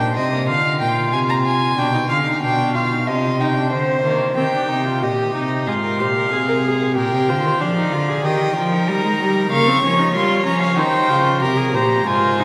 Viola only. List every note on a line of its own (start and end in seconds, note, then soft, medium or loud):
4.37 4.43 C4 medium
4.53 4.71 D4 medium
4.70 4.87 D#4 medium
4.85 5.03 F4 medium
5.02 5.34 G4 medium
5.34 5.69 D#4 medium
5.67 6.01 F4 medium
5.99 6.31 G4 medium
6.32 6.38 G#4 medium
6.48 6.54 A#4 medium
6.64 6.96 G#4 medium
6.97 7.30 G4 medium
7.29 7.62 F4 medium
7.60 7.76 D4 medium
7.77 7.94 D#4 medium
7.93 8.10 F4 medium
8.09 8.26 G#4 medium
8.25 8.55 G4 medium
8.56 8.74 F4 medium
8.72 9.51 D#4 medium
9.52 9.69 A#3 medium
9.67 9.83 C4 medium
9.83 10.00 C#4 medium
9.99 10.14 D#4 medium
10.14 10.45 F4 medium
10.46 10.79 C#4 medium
10.77 11.10 D#4 medium
11.09 11.43 F4 medium
11.41 11.59 G4 medium
11.57 11.75 G#4 medium
11.74 12.06 G4 medium
12.07 12.41 F4 medium
12.40 12.44 D#4 medium